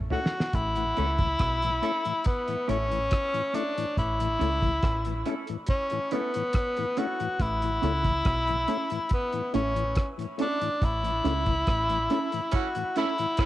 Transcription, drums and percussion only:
0.10 floor tom
0.26 snare
0.40 snare
0.53 kick, closed hi-hat
0.75 closed hi-hat
0.97 closed hi-hat
1.18 kick, closed hi-hat
1.39 kick, cross-stick, closed hi-hat
1.62 closed hi-hat
1.83 closed hi-hat
2.05 closed hi-hat
2.24 kick, closed hi-hat
2.48 closed hi-hat
2.69 closed hi-hat
2.92 closed hi-hat
3.11 kick, cross-stick, closed hi-hat
3.34 closed hi-hat
3.54 closed hi-hat
3.78 closed hi-hat
3.97 kick, closed hi-hat
4.20 closed hi-hat
4.41 closed hi-hat
4.62 kick, closed hi-hat
4.83 kick, cross-stick, closed hi-hat
5.05 closed hi-hat
5.26 closed hi-hat
5.47 closed hi-hat
5.67 kick, closed hi-hat
5.90 closed hi-hat
6.11 closed hi-hat
6.34 closed hi-hat
6.53 kick, cross-stick, closed hi-hat
6.76 closed hi-hat
6.97 closed hi-hat
7.20 closed hi-hat
7.40 kick, closed hi-hat
7.62 closed hi-hat
7.83 closed hi-hat
8.04 kick, closed hi-hat
8.25 kick, cross-stick, closed hi-hat
8.47 closed hi-hat
8.68 closed hi-hat
8.90 closed hi-hat
9.09 kick, closed hi-hat
9.32 closed hi-hat
9.54 closed hi-hat
9.76 closed hi-hat
9.96 kick, cross-stick, closed hi-hat
10.19 closed hi-hat
10.39 closed hi-hat
10.62 closed hi-hat
10.82 kick, closed hi-hat
11.04 closed hi-hat
11.25 closed hi-hat
11.46 kick, closed hi-hat
11.67 kick, cross-stick, closed hi-hat
11.89 closed hi-hat
12.10 closed hi-hat
12.32 closed hi-hat
12.52 kick, closed hi-hat
12.75 closed hi-hat
12.96 closed hi-hat
13.18 closed hi-hat
13.37 kick, cross-stick, closed hi-hat

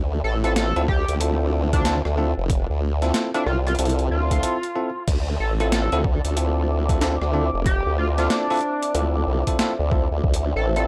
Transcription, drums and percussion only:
0.44 closed hi-hat
0.56 snare, closed hi-hat
0.76 closed hi-hat
0.88 kick
1.08 closed hi-hat
1.21 closed hi-hat
1.73 kick, closed hi-hat
1.85 snare, closed hi-hat
2.05 cross-stick
2.50 kick, closed hi-hat
3.02 snare, closed hi-hat
3.14 snare, closed hi-hat
3.34 cross-stick, closed hi-hat
3.46 cross-stick
3.67 cross-stick, closed hi-hat
3.75 closed hi-hat
3.79 closed hi-hat
3.85 closed hi-hat
3.89 closed hi-hat
3.99 closed hi-hat
4.31 kick, closed hi-hat
4.43 closed hi-hat
4.63 closed hi-hat
5.08 kick, closed hi-hat, crash
5.60 closed hi-hat
5.72 snare, closed hi-hat
5.92 closed hi-hat
6.04 kick
6.25 closed hi-hat
6.37 closed hi-hat
6.89 kick, closed hi-hat
7.01 snare, closed hi-hat
7.22 cross-stick
7.66 kick, closed hi-hat
8.18 snare, closed hi-hat
8.30 snare, closed hi-hat
8.50 cross-stick, closed hi-hat
8.52 closed hi-hat
8.54 closed hi-hat
8.56 closed hi-hat
8.57 closed hi-hat
8.59 closed hi-hat
8.61 closed hi-hat
8.82 closed hi-hat
8.95 closed hi-hat
9.47 kick, closed hi-hat
9.59 snare, closed hi-hat
9.91 kick
10.24 kick
10.34 closed hi-hat
10.76 closed hi-hat

